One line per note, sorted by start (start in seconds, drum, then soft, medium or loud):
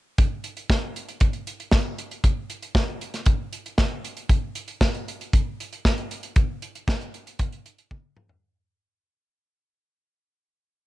0.18 kick medium
0.18 closed hi-hat medium
0.44 closed hi-hat medium
0.57 closed hi-hat soft
0.70 kick medium
0.70 snare medium
0.96 closed hi-hat medium
1.09 closed hi-hat soft
1.20 kick medium
1.20 closed hi-hat medium
1.33 closed hi-hat soft
1.47 closed hi-hat medium
1.60 closed hi-hat soft
1.71 kick loud
1.71 snare loud
1.98 closed hi-hat medium
2.11 closed hi-hat soft
2.24 kick medium
2.24 closed hi-hat medium
2.50 closed hi-hat medium
2.62 closed hi-hat soft
2.75 kick loud
2.75 snare loud
3.01 closed hi-hat medium
3.14 snare soft
3.14 closed hi-hat soft
3.26 kick medium
3.26 closed hi-hat medium
3.53 closed hi-hat medium
3.66 closed hi-hat soft
3.78 kick medium
3.78 snare medium
4.04 closed hi-hat medium
4.17 closed hi-hat soft
4.29 kick medium
4.29 closed hi-hat medium
4.55 closed hi-hat medium
4.68 closed hi-hat soft
4.81 kick medium
4.81 snare loud
4.95 closed hi-hat soft
5.08 closed hi-hat medium
5.21 closed hi-hat soft
5.33 kick medium
5.33 closed hi-hat medium
5.60 closed hi-hat medium
5.73 closed hi-hat soft
5.85 kick medium
5.85 snare medium
5.98 closed hi-hat soft
6.11 closed hi-hat medium
6.23 closed hi-hat soft
6.36 kick loud
6.36 closed hi-hat medium
6.62 closed hi-hat medium
6.75 closed hi-hat soft
6.88 kick loud
6.88 snare loud
7.01 closed hi-hat soft
7.14 closed hi-hat medium
7.27 closed hi-hat medium
7.39 kick loud
7.39 closed hi-hat medium
7.52 closed hi-hat soft
7.66 closed hi-hat medium
7.78 closed hi-hat soft
7.91 kick loud
7.91 high tom soft
8.17 mid tom medium
8.29 floor tom medium